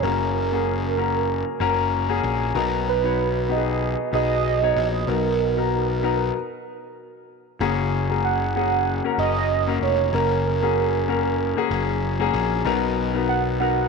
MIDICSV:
0, 0, Header, 1, 4, 480
1, 0, Start_track
1, 0, Key_signature, 6, "major"
1, 0, Tempo, 631579
1, 19, Time_signature, 4, 2, 24, 8
1, 10550, End_track
2, 0, Start_track
2, 0, Title_t, "Soft synth lead"
2, 0, Program_c, 0, 80
2, 21, Note_on_c, 0, 70, 85
2, 256, Note_off_c, 0, 70, 0
2, 261, Note_on_c, 0, 70, 85
2, 1669, Note_off_c, 0, 70, 0
2, 2195, Note_on_c, 0, 71, 92
2, 2637, Note_off_c, 0, 71, 0
2, 2668, Note_on_c, 0, 75, 94
2, 3113, Note_off_c, 0, 75, 0
2, 3151, Note_on_c, 0, 75, 100
2, 3863, Note_on_c, 0, 70, 86
2, 3875, Note_off_c, 0, 75, 0
2, 5300, Note_off_c, 0, 70, 0
2, 6263, Note_on_c, 0, 78, 104
2, 6483, Note_off_c, 0, 78, 0
2, 6503, Note_on_c, 0, 78, 99
2, 6949, Note_off_c, 0, 78, 0
2, 6986, Note_on_c, 0, 75, 94
2, 7431, Note_off_c, 0, 75, 0
2, 7469, Note_on_c, 0, 73, 89
2, 7709, Note_on_c, 0, 70, 90
2, 7720, Note_off_c, 0, 73, 0
2, 7943, Note_off_c, 0, 70, 0
2, 7947, Note_on_c, 0, 70, 88
2, 9350, Note_off_c, 0, 70, 0
2, 10099, Note_on_c, 0, 78, 102
2, 10205, Note_off_c, 0, 78, 0
2, 10334, Note_on_c, 0, 78, 105
2, 10550, Note_off_c, 0, 78, 0
2, 10550, End_track
3, 0, Start_track
3, 0, Title_t, "Grand piano"
3, 0, Program_c, 1, 0
3, 0, Control_c, 1, 64, 127
3, 0, Note_on_c, 1, 58, 64
3, 0, Note_on_c, 1, 61, 57
3, 0, Note_on_c, 1, 66, 56
3, 0, Note_on_c, 1, 68, 69
3, 0, Note_on_c, 1, 70, 67
3, 22, Note_off_c, 1, 58, 0
3, 22, Note_on_c, 1, 58, 59
3, 27, Note_off_c, 1, 61, 0
3, 27, Note_off_c, 1, 66, 0
3, 27, Note_on_c, 1, 61, 55
3, 27, Note_on_c, 1, 66, 51
3, 28, Note_on_c, 1, 49, 50
3, 32, Note_off_c, 1, 70, 0
3, 32, Note_on_c, 1, 70, 67
3, 359, Note_off_c, 1, 58, 0
3, 362, Note_off_c, 1, 61, 0
3, 362, Note_off_c, 1, 66, 0
3, 365, Note_off_c, 1, 70, 0
3, 397, Note_on_c, 1, 58, 58
3, 400, Note_on_c, 1, 61, 52
3, 403, Note_on_c, 1, 66, 52
3, 407, Note_off_c, 1, 68, 0
3, 407, Note_on_c, 1, 68, 63
3, 713, Note_off_c, 1, 49, 0
3, 713, Note_off_c, 1, 58, 0
3, 715, Note_off_c, 1, 61, 0
3, 716, Note_off_c, 1, 66, 0
3, 718, Note_off_c, 1, 68, 0
3, 740, Note_on_c, 1, 58, 56
3, 740, Note_on_c, 1, 61, 54
3, 747, Note_on_c, 1, 66, 56
3, 749, Note_on_c, 1, 70, 67
3, 1182, Note_off_c, 1, 58, 0
3, 1182, Note_off_c, 1, 61, 0
3, 1186, Note_off_c, 1, 66, 0
3, 1187, Note_off_c, 1, 70, 0
3, 1216, Note_on_c, 1, 58, 77
3, 1217, Note_on_c, 1, 61, 71
3, 1222, Note_on_c, 1, 66, 72
3, 1225, Note_on_c, 1, 70, 90
3, 1556, Note_off_c, 1, 58, 0
3, 1557, Note_off_c, 1, 61, 0
3, 1559, Note_off_c, 1, 66, 0
3, 1561, Note_off_c, 1, 70, 0
3, 1588, Note_on_c, 1, 58, 70
3, 1591, Note_on_c, 1, 66, 67
3, 1592, Note_on_c, 1, 61, 69
3, 1596, Note_on_c, 1, 68, 77
3, 1909, Note_off_c, 1, 58, 0
3, 1910, Note_off_c, 1, 61, 0
3, 1910, Note_off_c, 1, 66, 0
3, 1913, Note_off_c, 1, 68, 0
3, 1933, Note_on_c, 1, 59, 77
3, 1936, Note_on_c, 1, 63, 69
3, 1940, Note_on_c, 1, 54, 66
3, 1941, Note_on_c, 1, 47, 67
3, 1944, Note_on_c, 1, 66, 71
3, 1946, Note_on_c, 1, 70, 82
3, 1947, Control_c, 1, 64, 0
3, 2066, Control_c, 1, 64, 127
3, 2275, Note_off_c, 1, 59, 0
3, 2277, Note_off_c, 1, 63, 0
3, 2281, Note_off_c, 1, 66, 0
3, 2281, Note_off_c, 1, 70, 0
3, 2310, Note_on_c, 1, 59, 62
3, 2314, Note_on_c, 1, 63, 51
3, 2316, Note_on_c, 1, 66, 53
3, 2320, Note_on_c, 1, 73, 63
3, 2629, Note_off_c, 1, 54, 0
3, 2630, Note_off_c, 1, 47, 0
3, 2630, Note_off_c, 1, 59, 0
3, 2631, Note_off_c, 1, 63, 0
3, 2632, Note_off_c, 1, 66, 0
3, 2634, Note_off_c, 1, 73, 0
3, 2652, Note_on_c, 1, 59, 61
3, 2657, Note_on_c, 1, 63, 56
3, 2662, Note_on_c, 1, 66, 55
3, 2666, Note_on_c, 1, 67, 55
3, 2715, Note_on_c, 1, 68, 67
3, 2718, Note_off_c, 1, 67, 0
3, 3098, Note_off_c, 1, 59, 0
3, 3100, Note_off_c, 1, 63, 0
3, 3103, Note_off_c, 1, 66, 0
3, 3130, Note_off_c, 1, 68, 0
3, 3136, Note_on_c, 1, 59, 65
3, 3139, Note_on_c, 1, 63, 59
3, 3144, Note_on_c, 1, 66, 54
3, 3147, Note_on_c, 1, 68, 71
3, 3476, Note_off_c, 1, 59, 0
3, 3478, Note_off_c, 1, 63, 0
3, 3480, Note_off_c, 1, 66, 0
3, 3482, Note_off_c, 1, 68, 0
3, 3512, Note_on_c, 1, 59, 58
3, 3517, Note_on_c, 1, 63, 61
3, 3520, Note_on_c, 1, 66, 57
3, 3523, Note_on_c, 1, 73, 69
3, 3830, Note_off_c, 1, 59, 0
3, 3832, Note_off_c, 1, 63, 0
3, 3834, Note_off_c, 1, 66, 0
3, 3836, Note_off_c, 1, 73, 0
3, 3856, Note_on_c, 1, 59, 63
3, 3861, Note_on_c, 1, 63, 55
3, 3862, Note_on_c, 1, 47, 56
3, 3863, Note_on_c, 1, 54, 54
3, 3864, Note_on_c, 1, 66, 52
3, 3868, Note_on_c, 1, 70, 71
3, 4196, Note_off_c, 1, 59, 0
3, 4198, Note_off_c, 1, 63, 0
3, 4200, Note_off_c, 1, 66, 0
3, 4202, Note_off_c, 1, 70, 0
3, 4232, Note_on_c, 1, 59, 55
3, 4234, Note_on_c, 1, 63, 51
3, 4239, Note_on_c, 1, 66, 51
3, 4242, Note_on_c, 1, 70, 63
3, 4550, Note_off_c, 1, 47, 0
3, 4550, Note_off_c, 1, 54, 0
3, 4550, Note_off_c, 1, 59, 0
3, 4551, Note_off_c, 1, 63, 0
3, 4554, Note_off_c, 1, 66, 0
3, 4555, Note_off_c, 1, 70, 0
3, 4583, Note_on_c, 1, 59, 70
3, 4585, Note_on_c, 1, 63, 63
3, 4589, Note_on_c, 1, 66, 67
3, 4592, Note_on_c, 1, 70, 78
3, 4821, Note_off_c, 1, 59, 0
3, 4821, Note_off_c, 1, 63, 0
3, 4823, Note_off_c, 1, 66, 0
3, 4825, Note_off_c, 1, 70, 0
3, 4829, Control_c, 1, 64, 0
3, 5779, Note_on_c, 1, 58, 74
3, 5784, Note_on_c, 1, 49, 63
3, 5784, Note_on_c, 1, 61, 73
3, 5786, Note_on_c, 1, 66, 70
3, 5790, Note_on_c, 1, 68, 80
3, 5913, Control_c, 1, 64, 127
3, 6117, Note_off_c, 1, 58, 0
3, 6119, Note_off_c, 1, 61, 0
3, 6120, Note_off_c, 1, 66, 0
3, 6122, Note_off_c, 1, 68, 0
3, 6153, Note_on_c, 1, 58, 59
3, 6158, Note_on_c, 1, 61, 54
3, 6162, Note_on_c, 1, 66, 51
3, 6165, Note_on_c, 1, 68, 62
3, 6470, Note_off_c, 1, 49, 0
3, 6470, Note_off_c, 1, 58, 0
3, 6472, Note_off_c, 1, 61, 0
3, 6474, Note_off_c, 1, 66, 0
3, 6476, Note_off_c, 1, 68, 0
3, 6502, Note_on_c, 1, 58, 60
3, 6505, Note_on_c, 1, 61, 54
3, 6507, Note_on_c, 1, 66, 59
3, 6513, Note_on_c, 1, 68, 69
3, 6839, Note_off_c, 1, 58, 0
3, 6840, Note_off_c, 1, 61, 0
3, 6841, Note_off_c, 1, 66, 0
3, 6844, Note_off_c, 1, 68, 0
3, 6872, Note_on_c, 1, 58, 58
3, 6873, Note_on_c, 1, 61, 62
3, 6877, Note_on_c, 1, 66, 57
3, 6881, Note_on_c, 1, 70, 74
3, 7304, Note_off_c, 1, 58, 0
3, 7305, Note_off_c, 1, 61, 0
3, 7307, Note_off_c, 1, 66, 0
3, 7309, Note_off_c, 1, 70, 0
3, 7352, Note_on_c, 1, 58, 68
3, 7355, Note_on_c, 1, 61, 61
3, 7360, Note_on_c, 1, 66, 59
3, 7364, Note_on_c, 1, 70, 73
3, 7669, Note_off_c, 1, 58, 0
3, 7671, Note_off_c, 1, 61, 0
3, 7673, Note_off_c, 1, 66, 0
3, 7675, Note_off_c, 1, 70, 0
3, 7697, Note_on_c, 1, 58, 68
3, 7703, Note_on_c, 1, 61, 61
3, 7705, Note_on_c, 1, 66, 63
3, 7706, Note_on_c, 1, 49, 57
3, 7709, Note_on_c, 1, 70, 72
3, 8035, Note_off_c, 1, 58, 0
3, 8038, Note_off_c, 1, 61, 0
3, 8039, Note_off_c, 1, 66, 0
3, 8041, Note_off_c, 1, 70, 0
3, 8071, Note_on_c, 1, 58, 59
3, 8073, Note_on_c, 1, 61, 59
3, 8079, Note_on_c, 1, 66, 60
3, 8082, Note_on_c, 1, 68, 65
3, 8388, Note_off_c, 1, 58, 0
3, 8389, Note_off_c, 1, 61, 0
3, 8390, Note_off_c, 1, 49, 0
3, 8393, Note_off_c, 1, 66, 0
3, 8394, Note_off_c, 1, 68, 0
3, 8418, Note_on_c, 1, 58, 68
3, 8423, Note_on_c, 1, 61, 58
3, 8426, Note_on_c, 1, 66, 60
3, 8430, Note_on_c, 1, 70, 76
3, 8756, Note_off_c, 1, 58, 0
3, 8758, Note_off_c, 1, 61, 0
3, 8760, Note_off_c, 1, 66, 0
3, 8762, Note_off_c, 1, 70, 0
3, 8790, Note_on_c, 1, 58, 72
3, 8793, Note_on_c, 1, 61, 69
3, 8797, Note_on_c, 1, 66, 72
3, 8801, Note_on_c, 1, 68, 87
3, 9222, Note_off_c, 1, 58, 0
3, 9224, Note_off_c, 1, 61, 0
3, 9226, Note_off_c, 1, 66, 0
3, 9228, Note_off_c, 1, 68, 0
3, 9269, Note_on_c, 1, 58, 81
3, 9270, Note_on_c, 1, 61, 70
3, 9277, Note_on_c, 1, 66, 72
3, 9282, Note_on_c, 1, 68, 83
3, 9587, Note_off_c, 1, 58, 0
3, 9587, Note_off_c, 1, 61, 0
3, 9591, Note_off_c, 1, 66, 0
3, 9593, Note_off_c, 1, 68, 0
3, 9614, Note_on_c, 1, 59, 75
3, 9617, Note_on_c, 1, 47, 71
3, 9617, Note_on_c, 1, 63, 77
3, 9620, Note_on_c, 1, 54, 72
3, 9621, Note_on_c, 1, 66, 73
3, 9624, Note_on_c, 1, 70, 93
3, 9625, Control_c, 1, 64, 0
3, 9744, Control_c, 1, 64, 127
3, 9953, Note_off_c, 1, 59, 0
3, 9955, Note_off_c, 1, 63, 0
3, 9957, Note_off_c, 1, 66, 0
3, 9958, Note_off_c, 1, 70, 0
3, 9990, Note_on_c, 1, 59, 67
3, 9992, Note_on_c, 1, 63, 57
3, 9998, Note_on_c, 1, 66, 57
3, 10000, Note_on_c, 1, 70, 64
3, 10305, Note_off_c, 1, 47, 0
3, 10307, Note_off_c, 1, 54, 0
3, 10307, Note_off_c, 1, 59, 0
3, 10308, Note_off_c, 1, 63, 0
3, 10311, Note_off_c, 1, 66, 0
3, 10312, Note_off_c, 1, 70, 0
3, 10335, Note_on_c, 1, 59, 64
3, 10339, Note_on_c, 1, 63, 59
3, 10341, Note_on_c, 1, 66, 60
3, 10348, Note_on_c, 1, 70, 75
3, 10550, Note_off_c, 1, 59, 0
3, 10550, Note_off_c, 1, 63, 0
3, 10550, Note_off_c, 1, 66, 0
3, 10550, Note_off_c, 1, 70, 0
3, 10550, End_track
4, 0, Start_track
4, 0, Title_t, "Picked electric bass"
4, 0, Program_c, 2, 34
4, 18, Note_on_c, 2, 30, 88
4, 1082, Note_off_c, 2, 30, 0
4, 1216, Note_on_c, 2, 30, 80
4, 1667, Note_off_c, 2, 30, 0
4, 1699, Note_on_c, 2, 34, 70
4, 1922, Note_off_c, 2, 34, 0
4, 1935, Note_on_c, 2, 35, 93
4, 3001, Note_off_c, 2, 35, 0
4, 3136, Note_on_c, 2, 35, 77
4, 3587, Note_off_c, 2, 35, 0
4, 3615, Note_on_c, 2, 34, 77
4, 3840, Note_off_c, 2, 34, 0
4, 3856, Note_on_c, 2, 35, 92
4, 4786, Note_off_c, 2, 35, 0
4, 5778, Note_on_c, 2, 30, 92
4, 6841, Note_off_c, 2, 30, 0
4, 6976, Note_on_c, 2, 30, 79
4, 7426, Note_off_c, 2, 30, 0
4, 7455, Note_on_c, 2, 29, 77
4, 7679, Note_off_c, 2, 29, 0
4, 7698, Note_on_c, 2, 30, 90
4, 8760, Note_off_c, 2, 30, 0
4, 8895, Note_on_c, 2, 30, 85
4, 9344, Note_off_c, 2, 30, 0
4, 9374, Note_on_c, 2, 34, 87
4, 9598, Note_off_c, 2, 34, 0
4, 9611, Note_on_c, 2, 35, 102
4, 10550, Note_off_c, 2, 35, 0
4, 10550, End_track
0, 0, End_of_file